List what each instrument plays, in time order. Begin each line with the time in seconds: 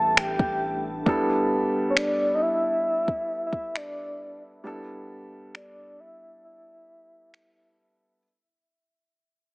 Already playing: 808-style bass A1, grand piano G3 B3 D4 E4 A4, ambient pad A3 D4 A4, soft synth lead A5
0.17 soft synth lead G5, finger snap
0.39 808-style bass A1, kick
1.06 grand piano G3 B3 D4 E4 A4, kick
1.90 soft synth lead C#5
1.97 soft synth lead D5, finger snap
2.35 soft synth lead D#5
2.42 soft synth lead E5
3.08 kick
3.46 soft synth lead E5
3.53 kick
3.76 soft synth lead D5, finger snap
4.64 grand piano G3 B3 D4 E4 A4
5.55 soft synth lead D5, finger snap
6.00 soft synth lead E5
6.44 soft synth lead E5
7.34 finger snap